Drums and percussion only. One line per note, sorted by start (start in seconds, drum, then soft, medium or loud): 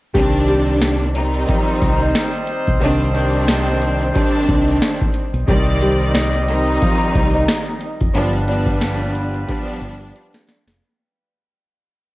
0.15 kick loud
0.15 closed hi-hat medium
0.33 closed hi-hat medium
0.48 closed hi-hat medium
0.67 closed hi-hat soft
0.81 snare loud
0.81 closed hi-hat medium
1.00 closed hi-hat medium
1.15 closed hi-hat medium
1.34 closed hi-hat medium
1.49 kick medium
1.49 closed hi-hat medium
1.68 closed hi-hat medium
1.82 kick loud
1.82 closed hi-hat medium
2.00 closed hi-hat soft
2.15 snare loud
2.15 closed hi-hat loud
2.33 closed hi-hat soft
2.47 closed hi-hat medium
2.67 kick medium
2.67 closed hi-hat medium
2.82 closed hi-hat medium
3.00 closed hi-hat medium
3.15 closed hi-hat medium
3.33 closed hi-hat soft
3.48 snare loud
3.48 closed hi-hat medium
3.66 closed hi-hat medium
3.82 closed hi-hat medium
4.01 closed hi-hat medium
4.15 kick loud
4.15 closed hi-hat medium
4.35 closed hi-hat medium
4.49 kick loud
4.49 closed hi-hat medium
4.67 closed hi-hat soft
4.82 snare loud
4.82 closed hi-hat loud
5.00 kick medium
5.00 closed hi-hat soft
5.14 closed hi-hat medium
5.34 closed hi-hat medium
5.48 kick loud
5.48 closed hi-hat medium
5.67 closed hi-hat medium
5.81 closed hi-hat medium
6.00 closed hi-hat soft
6.15 snare loud
6.15 closed hi-hat medium
6.33 closed hi-hat medium
6.48 closed hi-hat medium
6.68 closed hi-hat medium
6.82 kick medium
6.82 closed hi-hat medium
7.01 closed hi-hat soft
7.15 kick loud
7.15 closed hi-hat medium
7.34 closed hi-hat medium
7.48 snare loud
7.48 closed hi-hat loud
7.66 closed hi-hat soft
7.81 closed hi-hat medium
8.01 kick medium
8.01 closed hi-hat medium
8.15 closed hi-hat medium
8.33 closed hi-hat medium
8.48 closed hi-hat medium
8.66 kick loud
8.66 closed hi-hat medium
8.81 snare loud
8.81 closed hi-hat medium
9.00 closed hi-hat medium
9.15 closed hi-hat medium
9.34 closed hi-hat medium
9.49 kick loud
9.49 closed hi-hat medium
9.68 closed hi-hat soft
9.82 closed hi-hat medium
10.01 closed hi-hat medium
10.16 closed hi-hat loud
10.33 snare medium
10.33 closed hi-hat soft
10.47 snare loud
10.47 closed hi-hat medium
10.68 snare loud
10.68 closed hi-hat medium